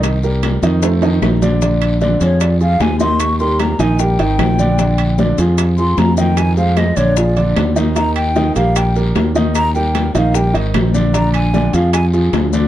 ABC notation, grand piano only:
X:1
M:4/4
L:1/8
Q:1/4=151
K:Bbmix
V:1 name="Grand piano"
[E,Ee] [G,GB]2 [E,Ee] [=A,=Ac] [E,Ee]2 [D,Dd] | [D,Dd]2 [D,Dd] [F,FA]2 [F,FA]2 [E,Ee]- | [E,Ee] [G,GB]2 [E,Ee] [G,GB] [E,Ee]2 [D,Dd] | [D,Dd]2 [D,Dd] [F,FA]2 [F,FA]2 [E,Ee]- |
[E,Ee] [A,Ac]2 [D,Dd] [F,FA] [D,Dd]2 [E,Ee] | [E,Ee]2 [E,Ee] [G,GB]2 [G,GB]2 [E,Ee]- | [E,Ee] [G,GB]2 [E,Ee] [G,GB] [E,Ee]2 [D,Dd] | [D,Dd]2 [D,Dd] [F,FA]2 [F,FA]2 [D,Dd] |]